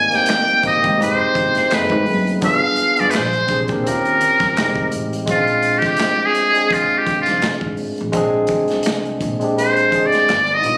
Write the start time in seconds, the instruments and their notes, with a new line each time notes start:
Already playing: tine electric piano G3 A#3 C4 D#4, muted trumpet G#5
0.10 tine electric piano A#3 C4 D#4, muted upright bass stroke, snare, closed hi-hat
0.14 tine electric piano G4, muted trumpet G5
0.26 closed hi-hat
0.30 snare, clap
0.48 closed hi-hat
0.62 upright bass G#1, tine electric piano A#3 C4 D#4, kick, closed hi-hat
0.66 tine electric piano G4, muted trumpet D#5
0.82 upright bass G#2, tine electric piano A#3 C4 D#4, kick, closed hi-hat
0.86 tine electric piano G4
0.98 upright bass F1, tine electric piano G3 C4 D#4
1.02 tine electric piano G#3 G4, muted trumpet C5, closed hi-hat
1.20 muted upright bass stroke
1.35 upright bass G1, kick, closed hi-hat
1.55 snare, closed hi-hat
1.69 upright bass F#1, tine electric piano A3 C4 D#4, snare, clap, closed hi-hat
1.73 tine electric piano G#4, muted trumpet B4
1.88 upright bass G#1, kick, closed hi-hat
2.06 upright bass F#1, open hi-hat
2.27 closed hi-hat
2.41 upright bass G1, tine electric piano B3 D4 F4, kick, closed hi-hat
2.45 tine electric piano G#4, muted trumpet F5
2.76 closed hi-hat
2.80 muted upright bass stroke
2.96 upright bass G2, tine electric piano B3 D4 F4, closed hi-hat
3.00 tine electric piano G#4, muted trumpet D5
3.10 muted trumpet B4, closed hi-hat
3.15 upright bass A#1, muted trumpet C5, snare, clap
3.33 closed hi-hat
3.47 upright bass A#1, tine electric piano C4 D4 G4, kick, closed hi-hat
3.52 tine electric piano G#4
3.68 upright bass A#2, tine electric piano C4 D4 G4, kick, closed hi-hat
3.72 tine electric piano A#4
3.84 upright bass D#2, tine electric piano C4 C#4 F4, muted trumpet A#4, closed hi-hat
3.89 tine electric piano G4
4.05 closed hi-hat
4.21 muted upright bass stroke, closed hi-hat
4.39 upright bass C2, kick, snare, closed hi-hat
4.55 upright bass F1, tine electric piano G3 C4 D#4, snare, clap, closed hi-hat
4.60 tine electric piano G#3 G4
4.75 upright bass F1, kick, closed hi-hat
4.92 upright bass A1, closed hi-hat
5.13 closed hi-hat
5.26 upright bass A#1, tine electric piano G#3 C4 C#4, kick, closed hi-hat
5.31 tine electric piano F4, muted trumpet F4
5.36 tine electric piano D4
5.47 closed hi-hat
5.62 closed hi-hat
5.78 muted trumpet G4, closed hi-hat
5.82 muted upright bass stroke, kick, snare
5.96 closed hi-hat
6.00 snare, clap
6.25 muted trumpet G#4
6.34 closed hi-hat
6.53 tine electric piano G#3 C4 D4, closed hi-hat
6.57 tine electric piano G#4
6.71 muted trumpet F4, kick, closed hi-hat
6.98 muted trumpet G4
7.07 muted upright bass stroke, kick, closed hi-hat
7.21 muted trumpet F4
7.26 upright bass F1, snare, closed hi-hat
7.42 muted upright bass stroke, snare, clap, closed hi-hat
7.61 upright bass G#1, kick
7.77 open hi-hat
7.98 upright bass A1, closed hi-hat
8.12 upright bass A#1, tine electric piano G#3 C4 D4, kick, closed hi-hat
8.17 tine electric piano G#4
8.47 kick, closed hi-hat
8.68 snare, closed hi-hat
8.72 upright bass C2
8.83 closed hi-hat
8.87 snare, clap
9.05 closed hi-hat
9.21 upright bass A#1, kick, closed hi-hat
9.40 tine electric piano G#3 C4 D4, closed hi-hat
9.44 tine electric piano G4
9.58 muted trumpet C5, closed hi-hat
9.76 closed hi-hat
9.91 upright bass G#1, tine electric piano G#3 C4 D4, kick, closed hi-hat
9.95 tine electric piano G#4
10.06 muted trumpet D5
10.12 snare, closed hi-hat
10.28 upright bass G1, snare, clap, closed hi-hat
10.46 closed hi-hat
10.54 muted trumpet D#5
10.62 upright bass B1, tine electric piano B3 D4 D#4, closed hi-hat
10.67 tine electric piano F4